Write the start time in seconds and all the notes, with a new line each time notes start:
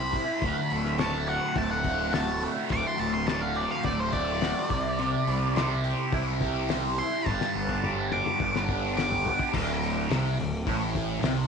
Already playing: C2 E4 G4 C5 B5
0.13 E4, kick, open hi-hat
0.42 D1 D2, kick, open hi-hat
0.70 D1 A3, open hi-hat
0.85 snare
0.98 F#4 A5, snare, open hi-hat
1.27 C4 F#5, open hi-hat
1.55 D1 A3 A5, kick, open hi-hat
1.71 F#5
1.84 C4, kick, open hi-hat
2.12 F#4 A5, snare, open hi-hat
2.41 A3, open hi-hat
2.69 D1 D2 D6, kick, open hi-hat
2.88 C6
2.98 D1 A3 A5, open hi-hat
3.14 C6
3.27 F#4 A5, snare, open hi-hat
3.42 F5
3.55 C4 D5, open hi-hat
3.71 F5
3.83 D1 A3 D5, kick, open hi-hat
4.00 C5
4.12 C4 D5, kick, open hi-hat
4.41 F#4, snare, open hi-hat
4.70 C2 C3, kick, open hi-hat
4.99 C3, open hi-hat
5.27 C2 E4, open hi-hat
5.56 C5, snare, open hi-hat
5.84 G4, open hi-hat
6.12 C2 E4, kick, open hi-hat
6.41 G4, kick, open hi-hat
6.69 C5, snare, open hi-hat
6.98 E4 C6, open hi-hat
7.26 G1 G2 A5, kick, high tom
7.41 snare
7.55 G1 B3
7.69 kick
7.84 G4, mid tom
8.12 D4 D6, mid tom
8.26 mid tom
8.40 G1 B3, kick
8.56 snare
8.69 D4, kick
8.97 G4 D6, snare
9.12 floor tom
9.25 B3, floor tom
9.39 kick
9.53 D1 D2, kick, crash
9.83 open hi-hat
10.10 C2 C3, snare, open hi-hat
10.39 D1 D2, open hi-hat
10.67 A1 A2, kick, open hi-hat
10.95 kick, open hi-hat
11.23 C2 C3, snare, open hi-hat